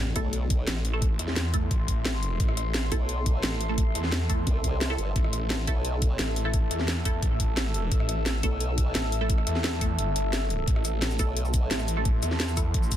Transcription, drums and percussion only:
0.16 kick, closed hi-hat
0.33 closed hi-hat
0.50 kick, closed hi-hat
0.67 snare, closed hi-hat
0.76 cross-stick
0.85 open hi-hat
1.02 kick, closed hi-hat
1.19 cross-stick, closed hi-hat
1.28 snare
1.36 snare, closed hi-hat
1.54 kick, closed hi-hat
1.71 kick, closed hi-hat
1.88 kick, closed hi-hat
2.05 snare, closed hi-hat
2.23 open hi-hat
2.40 kick, closed hi-hat
2.48 cross-stick
2.57 cross-stick, closed hi-hat
2.74 snare, closed hi-hat
2.92 kick, closed hi-hat
3.09 closed hi-hat
3.26 kick, closed hi-hat
3.43 snare, closed hi-hat
3.52 cross-stick
3.61 open hi-hat
3.78 kick, closed hi-hat
3.95 cross-stick, closed hi-hat
4.04 snare
4.12 snare, closed hi-hat
4.30 kick, closed hi-hat
4.47 kick, closed hi-hat
4.64 kick, closed hi-hat
4.81 snare, closed hi-hat
4.98 open hi-hat
5.16 kick, closed hi-hat
5.24 cross-stick
5.33 cross-stick, closed hi-hat
5.50 snare, closed hi-hat
5.67 kick, closed hi-hat
5.85 closed hi-hat
6.02 kick, closed hi-hat
6.19 snare, closed hi-hat
6.28 cross-stick
6.36 open hi-hat
6.54 kick, closed hi-hat
6.71 cross-stick, closed hi-hat
6.79 snare
6.88 snare, closed hi-hat
7.05 kick, closed hi-hat
7.22 kick, closed hi-hat
7.40 kick, closed hi-hat
7.57 snare, closed hi-hat
7.74 open hi-hat
7.92 kick, closed hi-hat
8.00 cross-stick
8.09 cross-stick, closed hi-hat
8.26 snare, closed hi-hat
8.43 kick, closed hi-hat
8.60 closed hi-hat
8.78 kick, closed hi-hat
8.95 snare, closed hi-hat
9.04 cross-stick
9.12 open hi-hat
9.30 kick, closed hi-hat
9.38 cross-stick
9.47 cross-stick, closed hi-hat
9.55 snare
9.64 snare, closed hi-hat
9.81 kick, closed hi-hat
9.99 closed hi-hat
10.16 closed hi-hat
10.33 snare, closed hi-hat
10.50 open hi-hat
10.68 kick, closed hi-hat
10.76 cross-stick
10.85 cross-stick, closed hi-hat, shaker
11.02 snare, closed hi-hat
11.11 shaker
11.19 kick, closed hi-hat, shaker
11.37 closed hi-hat
11.45 shaker
11.54 kick, closed hi-hat, shaker
11.71 snare, closed hi-hat
11.79 cross-stick, shaker
11.88 open hi-hat, shaker
12.05 kick, closed hi-hat
12.23 cross-stick, closed hi-hat, shaker
12.31 snare
12.40 snare, closed hi-hat
12.48 shaker
12.57 kick, closed hi-hat, shaker
12.74 kick, closed hi-hat
12.83 shaker
12.92 kick, closed hi-hat, shaker

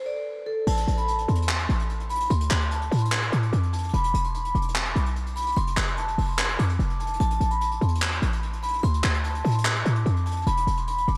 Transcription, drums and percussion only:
0.67 crash
0.77 closed hi-hat
0.88 closed hi-hat
0.98 closed hi-hat
1.08 closed hi-hat
1.18 closed hi-hat
1.28 closed hi-hat
1.35 closed hi-hat
1.42 closed hi-hat
1.49 clap
1.59 closed hi-hat
1.69 closed hi-hat
1.79 closed hi-hat
1.89 closed hi-hat
2.00 closed hi-hat
2.10 closed hi-hat
2.15 closed hi-hat
2.20 closed hi-hat
2.25 closed hi-hat
2.30 closed hi-hat
2.40 closed hi-hat
2.51 clap, closed hi-hat
2.61 closed hi-hat
2.71 closed hi-hat
2.81 closed hi-hat
2.92 closed hi-hat, open hi-hat
2.98 closed hi-hat
3.05 closed hi-hat
3.12 clap, closed hi-hat
3.22 closed hi-hat
3.32 closed hi-hat
3.43 closed hi-hat
3.53 closed hi-hat
3.63 closed hi-hat
3.73 closed hi-hat
3.78 closed hi-hat
3.83 closed hi-hat
3.89 closed hi-hat
3.94 closed hi-hat
4.04 closed hi-hat
4.14 closed hi-hat
4.24 closed hi-hat
4.34 closed hi-hat
4.45 closed hi-hat
4.55 closed hi-hat
4.62 closed hi-hat
4.68 closed hi-hat
4.75 clap, closed hi-hat
4.85 closed hi-hat
4.96 closed hi-hat
5.06 closed hi-hat
5.16 closed hi-hat
5.26 closed hi-hat
5.36 closed hi-hat
5.42 closed hi-hat
5.47 closed hi-hat
5.52 closed hi-hat
5.57 closed hi-hat
5.67 closed hi-hat
5.77 clap, closed hi-hat
5.87 closed hi-hat
5.98 closed hi-hat
6.08 closed hi-hat
6.18 open hi-hat
6.39 clap, closed hi-hat
6.49 closed hi-hat
6.59 closed hi-hat
6.69 closed hi-hat
6.79 closed hi-hat
6.90 closed hi-hat
7.00 closed hi-hat
7.07 closed hi-hat
7.13 closed hi-hat
7.20 closed hi-hat
7.30 closed hi-hat
7.41 closed hi-hat
7.51 closed hi-hat
7.61 closed hi-hat
7.71 closed hi-hat
7.81 closed hi-hat
7.88 closed hi-hat
7.95 closed hi-hat
8.02 clap, closed hi-hat
8.12 closed hi-hat
8.22 closed hi-hat
8.33 closed hi-hat
8.43 closed hi-hat
8.53 closed hi-hat
8.63 closed hi-hat
8.68 closed hi-hat
8.73 closed hi-hat
8.78 closed hi-hat
8.84 closed hi-hat
8.94 closed hi-hat
9.04 clap, closed hi-hat
9.14 closed hi-hat
9.24 closed hi-hat
9.35 closed hi-hat
9.45 closed hi-hat, open hi-hat
9.51 closed hi-hat
9.58 closed hi-hat
9.65 clap
9.75 closed hi-hat
9.85 closed hi-hat
9.96 closed hi-hat
10.06 closed hi-hat
10.16 closed hi-hat
10.26 closed hi-hat
10.31 closed hi-hat
10.37 closed hi-hat
10.42 closed hi-hat
10.47 closed hi-hat
10.57 closed hi-hat
10.67 closed hi-hat
10.77 closed hi-hat
10.87 closed hi-hat
10.98 closed hi-hat
11.08 closed hi-hat

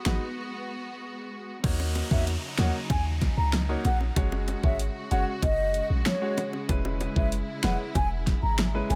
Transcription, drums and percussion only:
0.05 finger snap, snare, closed hi-hat, low bongo
1.64 kick, closed hi-hat, crash, high bongo
1.80 high bongo
1.95 closed hi-hat, high bongo
2.11 kick
2.27 closed hi-hat
2.58 finger snap, snare, closed hi-hat
2.90 kick, closed hi-hat, high bongo
3.21 kick, snare, closed hi-hat
3.52 finger snap, cross-stick, snare, closed hi-hat
3.85 closed hi-hat, low bongo
4.01 high bongo
4.16 kick, closed hi-hat, high bongo
4.32 high bongo
4.48 closed hi-hat, high bongo
4.64 kick
4.79 closed hi-hat
5.11 closed hi-hat
5.42 kick, closed hi-hat, high bongo
5.74 closed hi-hat
6.05 finger snap, cross-stick, snare, closed hi-hat
6.37 closed hi-hat, low bongo
6.53 high bongo
6.69 kick, closed hi-hat, high bongo
6.85 high bongo
7.01 closed hi-hat, high bongo
7.16 kick
7.32 closed hi-hat
7.63 finger snap, snare, closed hi-hat
7.95 kick, closed hi-hat, high bongo
8.27 kick, snare, closed hi-hat
8.58 finger snap, cross-stick, snare, closed hi-hat
8.90 closed hi-hat, low bongo

